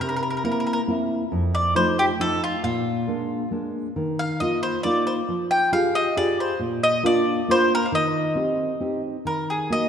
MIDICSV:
0, 0, Header, 1, 3, 480
1, 0, Start_track
1, 0, Key_signature, -3, "major"
1, 0, Tempo, 441501
1, 1424, Time_signature, 3, 2, 24, 8
1, 10749, End_track
2, 0, Start_track
2, 0, Title_t, "Mandolin"
2, 0, Program_c, 0, 25
2, 12, Note_on_c, 0, 70, 62
2, 78, Note_off_c, 0, 70, 0
2, 95, Note_on_c, 0, 70, 47
2, 161, Note_off_c, 0, 70, 0
2, 179, Note_on_c, 0, 70, 58
2, 234, Note_off_c, 0, 70, 0
2, 247, Note_on_c, 0, 70, 41
2, 316, Note_off_c, 0, 70, 0
2, 331, Note_on_c, 0, 70, 49
2, 387, Note_off_c, 0, 70, 0
2, 401, Note_on_c, 0, 70, 39
2, 474, Note_off_c, 0, 70, 0
2, 487, Note_on_c, 0, 70, 52
2, 547, Note_off_c, 0, 70, 0
2, 560, Note_on_c, 0, 70, 41
2, 637, Note_off_c, 0, 70, 0
2, 652, Note_on_c, 0, 70, 48
2, 711, Note_off_c, 0, 70, 0
2, 724, Note_on_c, 0, 70, 53
2, 782, Note_off_c, 0, 70, 0
2, 796, Note_on_c, 0, 70, 63
2, 874, Note_off_c, 0, 70, 0
2, 1681, Note_on_c, 0, 74, 83
2, 1892, Note_off_c, 0, 74, 0
2, 1916, Note_on_c, 0, 72, 78
2, 2134, Note_off_c, 0, 72, 0
2, 2165, Note_on_c, 0, 67, 83
2, 2225, Note_off_c, 0, 67, 0
2, 2403, Note_on_c, 0, 69, 92
2, 2618, Note_off_c, 0, 69, 0
2, 2649, Note_on_c, 0, 65, 77
2, 2856, Note_off_c, 0, 65, 0
2, 2870, Note_on_c, 0, 65, 66
2, 3780, Note_off_c, 0, 65, 0
2, 4559, Note_on_c, 0, 77, 78
2, 4777, Note_off_c, 0, 77, 0
2, 4787, Note_on_c, 0, 75, 72
2, 5015, Note_off_c, 0, 75, 0
2, 5031, Note_on_c, 0, 72, 82
2, 5251, Note_off_c, 0, 72, 0
2, 5255, Note_on_c, 0, 74, 72
2, 5506, Note_off_c, 0, 74, 0
2, 5510, Note_on_c, 0, 72, 67
2, 5575, Note_off_c, 0, 72, 0
2, 5988, Note_on_c, 0, 79, 76
2, 6225, Note_off_c, 0, 79, 0
2, 6229, Note_on_c, 0, 77, 76
2, 6472, Note_on_c, 0, 75, 89
2, 6481, Note_off_c, 0, 77, 0
2, 6692, Note_off_c, 0, 75, 0
2, 6713, Note_on_c, 0, 74, 88
2, 6958, Note_off_c, 0, 74, 0
2, 6962, Note_on_c, 0, 72, 62
2, 7175, Note_off_c, 0, 72, 0
2, 7430, Note_on_c, 0, 75, 92
2, 7669, Note_off_c, 0, 75, 0
2, 7676, Note_on_c, 0, 74, 93
2, 8157, Note_off_c, 0, 74, 0
2, 8167, Note_on_c, 0, 72, 97
2, 8400, Note_off_c, 0, 72, 0
2, 8424, Note_on_c, 0, 70, 89
2, 8542, Note_on_c, 0, 77, 42
2, 8552, Note_off_c, 0, 70, 0
2, 8615, Note_off_c, 0, 77, 0
2, 8643, Note_on_c, 0, 75, 86
2, 9792, Note_off_c, 0, 75, 0
2, 10076, Note_on_c, 0, 70, 63
2, 10299, Note_off_c, 0, 70, 0
2, 10330, Note_on_c, 0, 68, 55
2, 10566, Note_off_c, 0, 68, 0
2, 10573, Note_on_c, 0, 75, 78
2, 10749, Note_off_c, 0, 75, 0
2, 10749, End_track
3, 0, Start_track
3, 0, Title_t, "Nylon-string guitar"
3, 0, Program_c, 1, 24
3, 1, Note_on_c, 1, 48, 58
3, 459, Note_off_c, 1, 48, 0
3, 476, Note_on_c, 1, 58, 49
3, 480, Note_on_c, 1, 60, 39
3, 482, Note_on_c, 1, 64, 51
3, 856, Note_off_c, 1, 58, 0
3, 856, Note_off_c, 1, 60, 0
3, 860, Note_off_c, 1, 64, 0
3, 949, Note_on_c, 1, 58, 49
3, 956, Note_on_c, 1, 60, 39
3, 960, Note_on_c, 1, 64, 59
3, 1331, Note_off_c, 1, 58, 0
3, 1333, Note_off_c, 1, 60, 0
3, 1337, Note_off_c, 1, 64, 0
3, 1433, Note_on_c, 1, 41, 68
3, 1891, Note_off_c, 1, 41, 0
3, 1903, Note_on_c, 1, 53, 51
3, 1910, Note_on_c, 1, 57, 49
3, 1913, Note_on_c, 1, 63, 52
3, 2285, Note_off_c, 1, 53, 0
3, 2286, Note_off_c, 1, 57, 0
3, 2290, Note_off_c, 1, 63, 0
3, 2383, Note_on_c, 1, 53, 41
3, 2391, Note_on_c, 1, 57, 44
3, 2393, Note_on_c, 1, 63, 53
3, 2764, Note_off_c, 1, 53, 0
3, 2770, Note_off_c, 1, 57, 0
3, 2770, Note_off_c, 1, 63, 0
3, 2865, Note_on_c, 1, 46, 73
3, 3325, Note_off_c, 1, 46, 0
3, 3339, Note_on_c, 1, 56, 40
3, 3342, Note_on_c, 1, 58, 44
3, 3349, Note_on_c, 1, 62, 56
3, 3723, Note_off_c, 1, 56, 0
3, 3724, Note_off_c, 1, 58, 0
3, 3730, Note_off_c, 1, 62, 0
3, 3814, Note_on_c, 1, 56, 39
3, 3822, Note_on_c, 1, 58, 39
3, 3827, Note_on_c, 1, 62, 47
3, 4205, Note_off_c, 1, 56, 0
3, 4210, Note_off_c, 1, 58, 0
3, 4213, Note_off_c, 1, 62, 0
3, 4306, Note_on_c, 1, 51, 64
3, 4775, Note_off_c, 1, 51, 0
3, 4789, Note_on_c, 1, 58, 44
3, 4790, Note_on_c, 1, 63, 43
3, 4801, Note_on_c, 1, 65, 52
3, 5173, Note_off_c, 1, 63, 0
3, 5175, Note_off_c, 1, 58, 0
3, 5181, Note_off_c, 1, 65, 0
3, 5266, Note_on_c, 1, 58, 48
3, 5271, Note_on_c, 1, 63, 47
3, 5278, Note_on_c, 1, 65, 52
3, 5654, Note_off_c, 1, 58, 0
3, 5655, Note_off_c, 1, 63, 0
3, 5661, Note_off_c, 1, 65, 0
3, 5747, Note_on_c, 1, 53, 60
3, 6216, Note_off_c, 1, 53, 0
3, 6222, Note_on_c, 1, 67, 49
3, 6223, Note_on_c, 1, 65, 45
3, 6230, Note_on_c, 1, 68, 58
3, 6608, Note_off_c, 1, 67, 0
3, 6610, Note_off_c, 1, 65, 0
3, 6613, Note_off_c, 1, 68, 0
3, 6704, Note_on_c, 1, 65, 49
3, 6712, Note_on_c, 1, 67, 50
3, 6715, Note_on_c, 1, 68, 56
3, 7087, Note_off_c, 1, 65, 0
3, 7093, Note_off_c, 1, 67, 0
3, 7093, Note_off_c, 1, 68, 0
3, 7169, Note_on_c, 1, 46, 65
3, 7637, Note_off_c, 1, 46, 0
3, 7645, Note_on_c, 1, 58, 51
3, 7650, Note_on_c, 1, 62, 49
3, 7652, Note_on_c, 1, 65, 63
3, 8031, Note_off_c, 1, 58, 0
3, 8032, Note_off_c, 1, 62, 0
3, 8035, Note_off_c, 1, 65, 0
3, 8134, Note_on_c, 1, 58, 49
3, 8139, Note_on_c, 1, 62, 42
3, 8148, Note_on_c, 1, 65, 52
3, 8516, Note_off_c, 1, 58, 0
3, 8520, Note_off_c, 1, 62, 0
3, 8525, Note_off_c, 1, 65, 0
3, 8612, Note_on_c, 1, 51, 61
3, 9077, Note_off_c, 1, 51, 0
3, 9079, Note_on_c, 1, 60, 49
3, 9090, Note_on_c, 1, 63, 39
3, 9098, Note_on_c, 1, 67, 55
3, 9470, Note_off_c, 1, 60, 0
3, 9477, Note_off_c, 1, 63, 0
3, 9479, Note_off_c, 1, 67, 0
3, 9570, Note_on_c, 1, 60, 47
3, 9576, Note_on_c, 1, 63, 41
3, 9580, Note_on_c, 1, 67, 46
3, 9961, Note_off_c, 1, 60, 0
3, 9964, Note_off_c, 1, 63, 0
3, 9967, Note_off_c, 1, 67, 0
3, 10058, Note_on_c, 1, 51, 48
3, 10533, Note_off_c, 1, 51, 0
3, 10546, Note_on_c, 1, 58, 51
3, 10547, Note_on_c, 1, 63, 45
3, 10551, Note_on_c, 1, 66, 53
3, 10749, Note_off_c, 1, 58, 0
3, 10749, Note_off_c, 1, 63, 0
3, 10749, Note_off_c, 1, 66, 0
3, 10749, End_track
0, 0, End_of_file